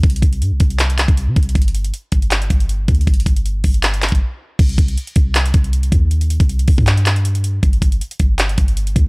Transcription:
0.03 C2, kick, closed hi-hat
0.10 closed hi-hat
0.16 closed hi-hat
0.22 C2, kick, closed hi-hat
0.33 closed hi-hat
0.41 G2, closed hi-hat
0.51 C2
0.60 C2, kick, closed hi-hat
0.70 closed hi-hat
0.79 clap, closed hi-hat
0.90 closed hi-hat
0.98 clap, closed hi-hat
1.08 C2, kick, closed hi-hat
1.17 closed hi-hat
1.27 C3
1.36 C2, kick, closed hi-hat
1.43 closed hi-hat
1.49 closed hi-hat
1.55 G1, kick, closed hi-hat
1.62 closed hi-hat
1.68 closed hi-hat
1.75 closed hi-hat
1.84 closed hi-hat
1.94 closed hi-hat
2.12 G1, kick, closed hi-hat
2.22 closed hi-hat
2.31 clap, closed hi-hat
2.42 closed hi-hat
2.50 G1, kick, closed hi-hat
2.60 closed hi-hat
2.69 closed hi-hat
2.88 D2, kick, closed hi-hat
2.95 closed hi-hat
3.01 closed hi-hat
3.07 G1, kick, closed hi-hat
3.14 closed hi-hat
3.20 closed hi-hat
3.26 G1, kick, closed hi-hat
3.36 closed hi-hat
3.46 closed hi-hat
3.64 G1, kick, open hi-hat
3.74 closed hi-hat
3.83 clap, closed hi-hat
3.94 closed hi-hat
4.02 clap, closed hi-hat
4.09 G1, kick, closed hi-hat
4.15 closed hi-hat
4.59 C2, kick, closed hi-hat, crash
4.69 closed hi-hat
4.78 C2, kick, closed hi-hat
4.88 closed hi-hat
4.97 closed hi-hat
5.07 closed hi-hat
5.16 C2, kick, closed hi-hat
5.35 clap, closed hi-hat
5.46 closed hi-hat
5.54 C2, kick, closed hi-hat
5.64 closed hi-hat
5.73 closed hi-hat
5.83 closed hi-hat
5.92 D#2, kick, closed hi-hat
6.11 closed hi-hat
6.21 closed hi-hat
6.30 closed hi-hat
6.40 C2, kick, closed hi-hat
6.49 closed hi-hat
6.59 closed hi-hat
6.68 C2, kick, open hi-hat
6.78 G2, kick
6.87 clap, closed hi-hat
6.97 closed hi-hat
7.06 clap, closed hi-hat
7.16 closed hi-hat
7.25 closed hi-hat
7.35 closed hi-hat
7.44 closed hi-hat
7.63 G1, kick, closed hi-hat
7.73 closed hi-hat
7.82 G1, kick, closed hi-hat
7.92 closed hi-hat
8.01 closed hi-hat
8.11 closed hi-hat
8.19 G1, kick, closed hi-hat
8.39 clap, closed hi-hat
8.49 closed hi-hat
8.58 G1, kick, closed hi-hat
8.68 closed hi-hat
8.77 closed hi-hat
8.87 closed hi-hat
8.96 D2, kick, closed hi-hat

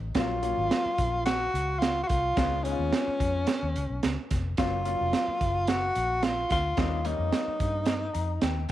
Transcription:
Already playing: A1
0.15 A#1 F#3 A#3 C#4 F4, kick, snare, closed hi-hat
0.42 F#3 A#3 C#4 F4, closed hi-hat
0.57 G#1
0.71 snare, closed hi-hat
0.86 muted fingered electric bass stroke
0.98 A#1, kick, closed hi-hat
1.26 F#4, snare, closed hi-hat
1.54 C#2, closed hi-hat
1.79 F4, snare, closed hi-hat
2.03 F#4
2.08 C2 F4, kick, closed hi-hat
2.36 C#2 G#3 B3 C#4 F4, kick, snare, closed hi-hat
2.64 G#3 B3 C#4 D#4, closed hi-hat
2.72 F4
2.79 D#2
2.93 snare, closed hi-hat
3.08 muted fingered electric bass stroke
3.20 F2, kick, closed hi-hat
3.47 snare, closed hi-hat
3.63 D#2
3.76 C#2, closed hi-hat
3.90 B1
4.03 C#2, snare, closed hi-hat
4.31 F1, kick, snare, closed hi-hat
4.57 F#1 F#3 A#3 C#4 F4, kick, snare, closed hi-hat
4.85 F#3 A#3 C#4 F4, closed hi-hat
5.01 F1
5.13 snare, closed hi-hat
5.28 muted fingered electric bass stroke
5.41 F#1, kick, closed hi-hat
5.67 F#4, snare, closed hi-hat
5.95 A#1, closed hi-hat
6.23 F4, snare, closed hi-hat
6.50 D2 F4, kick, snare, closed hi-hat
6.77 D#2 G3 A#3 C#4 D#4, kick, snare, closed hi-hat
7.04 G3 A#3 C#4 D#4, closed hi-hat
7.19 F2
7.32 snare, closed hi-hat
7.48 muted fingered electric bass stroke
7.60 G2, kick, closed hi-hat
7.86 snare, closed hi-hat
8.13 F2 A#5, closed hi-hat
8.41 D#2 G5, snare, closed hi-hat
8.69 closed hi-hat

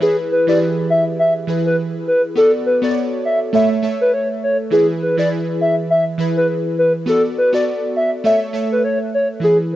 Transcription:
0.00 E3 E4 G#4 B4
0.32 B4
0.47 E3 E4 G4 B4 D5
0.55 G#4
0.90 E5
1.19 E5
1.47 E3 E4 G#4 B4
1.66 B4
2.08 B4
2.35 B3 F#4 A4 D5
2.66 B4
2.82 B3 F#4 A4 C#5 D5
2.91 D5
3.25 E5
3.53 A3 A4 C#5 E5
3.82 A3 A4 C#5 E5
4.01 B4
4.14 C#5
4.43 C#5
4.71 E3 E4 G#4 B4
5.02 B4
5.17 E3 E4 G#4 B4 D5
5.61 E5
5.90 E5
6.18 E3 E4 G#4 B4
6.37 B4
6.79 B4
7.06 B3 F#4 A4 D5
7.38 B4
7.53 B3 F#4 A4 D5
7.96 E5
8.24 A3 A4 C#5 E5
8.53 A3 A4 C#5 E5
8.72 B4
8.84 C#5
9.14 C#5
9.40 E3 E4 G#4
9.45 B4

